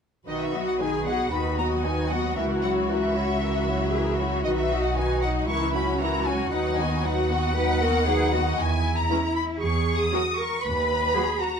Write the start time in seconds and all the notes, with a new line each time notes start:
0.27 B1 D#3 D#4 F#4 B4 D#5
0.41 E5
0.53 F#3 B3 F#4 D#5
0.67 F#5
0.80 D#3 D#4 G#4 B4 G#5
1.06 F#3 B3 F#4 D#5 F#5
1.32 D#2 D#3 D#4 F#4 B4 B5
1.58 F#3 B3 F#4 D#5 A#5
1.84 D#3 D#4 F#4 B4 G#5
2.10 F#3 B3 F#4 D#5 F#5
2.36 C#2 E3 E4 F#4 A#4 E5
2.62 F#3 E4 F#4 C#5 F#5
2.88 E3 E4 F#4 A#4 E5
3.15 F#3 E4 F#4 C#5
3.40 E3 E4 F#4 A#4
3.67 F#3 E4 F#4 C#5
3.93 E3 E4 F#4 G#4 A#4
4.19 F#3 E4 F#4 C#5
4.44 B1 D#3 D#4 F#4 B4 D#5
4.57 E5
4.70 F#3 D#4 F#4 D#5
4.83 F#5
4.95 D#3 D#4 F#4 B4 G#5
5.22 F#3 D#4 F#4 D#5 F#5
5.48 C#2 E3 E4 A#4 C#6
5.74 F#3 C#4 F#4 C#5 B5
6.00 E3 E4 F#4 A#4 A#5
6.26 F#3 C#4 F#4 C#5 G#5
6.51 D#2 F#3 D#4 B4 F#5
6.78 D#3 B3 F#4 D#5 G#5
7.04 F#3 D#4 F#4 B4 F#5
7.31 D#3 B3 F#4 D#5
7.56 F#3 D#4 B4
7.82 D#3 B3 F#4 A#4 D#5
8.08 F#3 D#4 G#4 B4
8.34 D#3 B3 F#4 D#5
8.59 E2 E4 G#5
8.97 A#5
9.10 G#3 C#4 E4 B4
9.36 B5
9.62 E2 G#4 C#6
10.01 D#6
10.13 F#3 C#4 F#4 A#4
10.38 A#4 C#6
10.64 D#2 B4 B5
11.16 F#3 F#4 G#4 B4
11.41 F#4 A#5